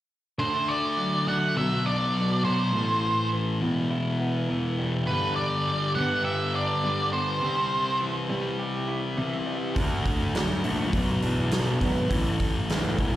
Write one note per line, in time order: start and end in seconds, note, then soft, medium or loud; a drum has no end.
0.39 1.25 D3 medium
0.39 1.56 D3 medium
0.39 1.26 A3 medium
0.39 1.26 D4 medium
0.39 0.69 C5 medium
0.68 1.28 D5 medium
0.97 1.56 F#3 medium
1.27 1.55 D3 medium
1.27 1.57 A3 medium
1.27 1.55 A3 medium
1.27 1.55 D4 medium
1.27 1.55 F#5 medium
1.56 2.42 B2 medium
1.56 2.73 B2 medium
1.56 2.43 F#3 medium
1.56 2.43 B3 medium
1.56 1.87 E5 medium
1.86 2.74 D4 medium
1.86 2.44 D5 medium
2.16 2.74 F#3 medium
2.44 2.72 B2 medium
2.44 2.72 F#3 medium
2.44 2.72 B3 medium
2.44 2.74 B3 medium
2.44 3.28 C5 medium
2.73 3.59 A2 medium
2.73 3.62 A2 medium
2.73 3.60 E3 medium
2.73 3.60 A3 medium
3.32 3.62 E3 medium
3.61 4.47 E2 medium
3.61 5.08 E2 medium
3.61 4.48 B2 medium
3.61 4.49 E3 medium
3.91 5.08 E4 medium
4.20 5.08 B3 medium
4.50 5.06 E2 medium
4.50 5.07 B2 medium
4.50 5.08 E3 medium
4.50 5.07 E3 medium
4.79 5.68 G3 medium
5.07 5.94 G2 medium
5.07 6.54 G2 medium
5.07 5.95 D3 medium
5.07 5.96 G3 medium
5.07 5.35 B4 medium
5.36 5.91 D5 medium
5.68 6.82 G3 medium
5.95 6.82 G2 medium
5.95 6.83 D3 medium
5.95 6.82 G3 medium
5.95 7.11 B3 medium
5.95 6.24 F#5 medium
6.25 7.42 G4 medium
6.25 6.52 E5 medium
6.54 7.42 D4 medium
6.54 7.10 D5 medium
6.83 7.41 G2 medium
6.83 7.41 D3 medium
6.83 7.42 G3 medium
7.12 7.42 B3 medium
7.12 7.97 C5 medium
7.41 8.88 C3 medium
7.41 8.28 C3 medium
7.41 8.29 G3 medium
7.41 8.28 C4 medium
8.00 9.16 E3 medium
8.29 9.17 C3 medium
8.29 9.45 G3 medium
8.29 9.17 G3 medium
8.29 9.16 C4 medium
8.59 9.76 G4 medium
8.88 9.76 E4 medium
9.17 9.75 C3 medium
9.17 9.76 E3 medium
9.17 9.75 G3 medium
9.17 9.76 C4 medium
9.46 9.76 G3 medium
9.76 10.03 D2 medium
9.76 10.93 D3 medium
9.76 10.62 D3 medium
9.76 10.63 A3 medium
9.76 10.63 D4 medium
9.76 kick loud
9.76 open hi-hat medium
10.06 10.32 D2 medium
10.06 kick medium
10.06 open hi-hat soft
10.34 10.62 D2 medium
10.34 10.93 F#3 medium
10.34 snare loud
10.34 open hi-hat medium
10.64 10.91 A#1 medium
10.64 10.93 D3 medium
10.64 10.93 A3 medium
10.64 10.92 A3 medium
10.64 10.92 D4 medium
10.64 open hi-hat soft
10.93 11.20 B1 medium
10.93 11.80 B2 medium
10.93 12.10 B2 medium
10.93 11.80 F#3 medium
10.93 11.79 B3 medium
10.93 kick loud
10.93 open hi-hat medium
11.22 11.50 E2 medium
11.22 12.10 D4 medium
11.22 open hi-hat soft
11.51 11.79 B1 medium
11.51 12.11 F#3 medium
11.51 snare medium
11.51 open hi-hat medium
11.81 12.08 G#1 medium
11.81 12.10 B2 medium
11.81 12.09 F#3 medium
11.81 12.09 B3 medium
11.81 12.11 B3 medium
11.81 kick medium
11.81 open hi-hat soft
12.10 12.37 A1 medium
12.10 12.97 A2 medium
12.10 12.99 A2 medium
12.10 12.97 E3 medium
12.10 12.98 A3 medium
12.10 kick medium
12.10 open hi-hat medium
12.40 12.67 A1 medium
12.40 kick medium
12.40 open hi-hat soft
12.69 12.96 D2 medium
12.69 12.99 E3 medium
12.69 snare medium
12.69 open hi-hat medium
12.98 13.16 E1 medium
12.98 13.16 E2 medium
12.98 13.16 B2 medium
12.98 13.16 E3 medium
12.98 kick medium
12.98 open hi-hat soft